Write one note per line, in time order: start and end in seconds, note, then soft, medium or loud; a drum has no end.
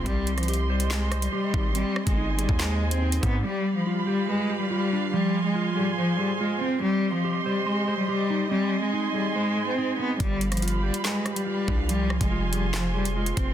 0.00 3.40 C6 loud
0.05 1.29 C2 loud
0.05 0.36 G3 loud
0.05 1.11 C4 loud
0.05 1.73 G4 medium
0.05 3.41 D#5 medium
0.05 kick loud
0.05 closed hi-hat medium
0.27 closed hi-hat medium
0.38 0.68 F3 medium
0.38 cross-stick medium
0.38 closed hi-hat medium
0.43 closed hi-hat medium
0.48 1.31 G4 medium
0.48 closed hi-hat medium
0.54 closed hi-hat medium
0.69 0.87 G3 medium
0.69 1.11 C5 medium
0.80 closed hi-hat medium
0.90 1.20 G#3 medium
0.90 1.75 C6 loud
0.90 snare loud
0.90 clap loud
1.12 1.75 C5 medium
1.12 cross-stick loud
1.12 closed hi-hat medium
1.22 1.31 G3 medium
1.22 closed hi-hat loud
1.32 1.73 G3 medium
1.32 1.75 G4 medium
1.54 1.84 G#1 loud
1.54 1.74 D#4 medium
1.54 kick loud
1.75 2.05 G3 loud
1.75 2.81 C4 loud
1.75 3.42 G#5 medium
1.75 closed hi-hat medium
1.96 cross-stick loud
2.07 2.47 G1 loud
2.07 2.37 G#3 medium
2.07 kick loud
2.07 closed hi-hat medium
2.17 3.01 D#4 medium
2.38 2.56 G3 medium
2.38 2.80 G#4 medium
2.38 closed hi-hat medium
2.49 3.20 D#2 loud
2.49 kick medium
2.59 2.89 G#3 medium
2.59 3.44 C5 loud
2.59 snare loud
2.59 clap medium
2.81 3.44 G#4 medium
2.91 3.21 C4 medium
2.91 closed hi-hat loud
3.02 3.44 D#4 medium
3.12 closed hi-hat medium
3.23 3.43 G#2 loud
3.23 3.41 B3 medium
3.23 3.44 C4 medium
3.23 kick loud
3.23 closed hi-hat medium
3.44 3.74 G3 loud
3.44 4.50 G3 loud
3.44 5.11 G4 medium
3.44 6.79 F5 medium
3.44 5.11 B5 medium
3.76 4.05 F3 medium
3.86 4.69 F4 medium
4.07 4.25 G3 medium
4.07 4.49 G4 medium
4.28 4.58 G#3 medium
4.28 5.13 B4 medium
4.50 5.13 G4 medium
4.60 4.69 G3 medium
4.70 5.11 G3 medium
4.70 5.13 F4 medium
4.93 5.13 D4 medium
5.13 6.19 F3 loud
5.13 5.43 G3 loud
5.13 6.80 G#5 medium
5.13 6.80 C6 medium
5.45 5.75 G#3 medium
5.55 6.39 F4 loud
5.76 5.94 G3 medium
5.76 6.17 G#4 medium
5.98 6.16 F3 medium
5.98 6.82 C5 loud
6.18 6.37 G3 medium
6.18 6.82 G#4 medium
6.40 6.58 G#3 medium
6.40 6.82 F4 medium
6.61 6.80 C4 medium
6.61 6.79 C4 medium
6.81 7.12 G3 loud
6.81 7.87 C4 loud
6.81 8.49 G4 medium
6.81 10.17 D#5 medium
6.81 8.49 C6 loud
7.14 7.44 F3 medium
7.24 8.07 G4 medium
7.45 7.63 G3 medium
7.45 7.87 C5 medium
7.66 7.96 G#3 medium
7.66 8.51 C6 loud
7.88 8.51 C5 medium
7.98 8.07 G3 medium
8.08 8.49 G3 medium
8.08 8.51 G4 loud
8.30 8.51 D#4 medium
8.51 8.81 G3 loud
8.51 9.57 C4 loud
8.51 10.18 G#5 medium
8.51 10.18 C6 medium
8.83 9.13 G#3 medium
8.93 9.77 D#4 medium
9.14 9.32 G3 medium
9.14 9.56 G#4 medium
9.35 9.65 G#3 medium
9.35 10.20 C5 loud
9.57 10.20 G#4 medium
9.67 9.97 C4 medium
9.78 10.20 D#4 medium
9.99 10.17 B3 medium
9.99 10.20 C4 medium
10.20 10.91 G1 loud
10.20 10.50 G3 loud
10.20 11.26 G3 loud
10.20 11.87 G4 medium
10.20 13.54 F5 medium
10.20 11.87 B5 medium
10.20 kick loud
10.20 closed hi-hat medium
10.41 closed hi-hat medium
10.52 10.82 F3 medium
10.52 cross-stick medium
10.52 closed hi-hat medium
10.57 closed hi-hat medium
10.62 11.45 F4 medium
10.62 closed hi-hat medium
10.68 closed hi-hat medium
10.83 11.01 G3 medium
10.83 11.25 G4 loud
10.94 closed hi-hat medium
11.04 11.34 G#3 loud
11.04 11.89 B4 medium
11.04 snare loud
11.04 clap loud
11.26 11.89 G4 medium
11.26 cross-stick loud
11.26 closed hi-hat medium
11.36 11.45 G3 medium
11.36 closed hi-hat loud
11.46 11.87 G3 medium
11.46 11.89 F4 medium
11.68 12.19 C2 loud
11.68 11.89 D4 medium
11.68 kick loud
11.89 12.95 F3 loud
11.89 12.19 G3 loud
11.89 13.54 G#5 medium
11.89 13.54 C6 loud
11.89 closed hi-hat medium
12.10 cross-stick loud
12.21 13.33 F1 loud
12.21 12.51 G#3 medium
12.21 kick loud
12.21 closed hi-hat medium
12.31 13.15 F4 loud
12.52 12.70 G3 medium
12.52 12.93 G#4 medium
12.52 closed hi-hat medium
12.74 12.92 F3 medium
12.74 13.54 C5 loud
12.74 snare loud
12.74 clap loud
12.94 13.13 G3 medium
12.94 13.54 G#4 medium
13.05 closed hi-hat loud
13.16 13.34 G#3 medium
13.16 13.54 F4 medium
13.26 closed hi-hat medium
13.37 13.54 F1 loud
13.37 13.54 C4 medium
13.37 kick loud
13.37 closed hi-hat medium